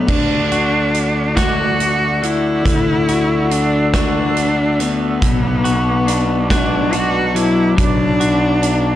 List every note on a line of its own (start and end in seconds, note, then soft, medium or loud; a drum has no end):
0.08 2.61 D2 medium
0.08 2.21 D3 medium
0.08 1.38 D4 medium
0.08 5.19 D5 medium
0.08 5.19 F#5 medium
0.08 2.64 D6 medium
0.08 kick medium
0.08 crash medium
0.52 1.36 F#4 medium
0.52 closed hi-hat soft
0.94 closed hi-hat soft
1.36 2.26 F#4 medium
1.36 3.08 F#4 medium
1.36 kick medium
1.36 snare medium
1.36 closed hi-hat medium
1.80 closed hi-hat soft
2.23 2.64 D3 medium
2.23 3.53 E4 medium
2.23 closed hi-hat soft
2.65 5.18 D2 medium
2.65 4.79 D3 medium
2.65 5.20 E6 medium
2.65 kick medium
2.65 closed hi-hat medium
3.08 3.94 F#4 medium
3.08 closed hi-hat soft
3.51 3.93 D4 medium
3.51 closed hi-hat medium
3.93 4.82 D4 medium
3.93 5.64 F#4 medium
3.93 kick medium
3.93 snare medium
3.93 closed hi-hat medium
4.37 closed hi-hat soft
4.80 5.22 D3 medium
4.80 6.52 B3 medium
4.80 closed hi-hat medium
5.22 7.74 B1 medium
5.22 7.35 B2 medium
5.22 8.96 B4 medium
5.22 8.96 A5 medium
5.22 8.96 D6 medium
5.22 kick medium
5.22 closed hi-hat medium
5.64 6.50 F#4 medium
5.64 closed hi-hat soft
6.07 6.92 D4 medium
6.07 closed hi-hat soft
6.50 6.95 D4 medium
6.50 8.19 F#4 medium
6.50 kick medium
6.50 snare medium
6.50 closed hi-hat medium
6.93 8.61 D4 medium
6.93 7.38 F#4 medium
6.93 closed hi-hat soft
7.35 8.96 F#3 medium
7.35 7.78 E4 medium
7.35 closed hi-hat soft
7.77 8.96 B1 medium
7.77 8.96 B2 medium
7.77 8.96 D4 medium
7.77 kick medium
7.77 closed hi-hat medium
8.20 8.96 F#4 medium
8.20 closed hi-hat medium
8.62 8.96 D4 medium
8.62 closed hi-hat medium